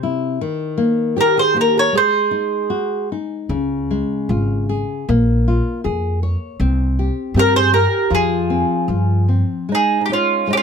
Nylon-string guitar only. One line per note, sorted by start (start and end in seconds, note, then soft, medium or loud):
0.00 0.38 C3 medium
0.00 0.40 E4 medium
0.41 1.89 D#3 medium
0.78 1.15 A#3 medium
1.16 1.54 G4 medium
1.54 1.92 A#3 medium
1.93 3.46 G#3 medium
2.31 2.69 D#4 soft
2.70 3.09 F#4 soft
3.12 3.50 D#4 soft
3.50 5.04 C#3 medium
3.91 4.29 G#3 soft
4.30 4.68 F4 medium
4.69 5.07 G#4 medium
5.09 6.56 A#3 medium
5.48 5.84 F4 medium
5.84 6.21 G#4 medium
6.23 6.59 C#5 medium
6.61 7.35 C4 medium
6.99 7.35 G4 medium
7.36 7.72 C4 medium
7.73 8.10 G4 soft
8.11 9.65 F3 medium
8.50 8.88 C4 soft
8.89 9.28 F4 soft
9.29 9.68 C4 soft
9.69 10.46 G#3 medium
10.09 10.47 D#4 soft
10.47 10.62 G#3 soft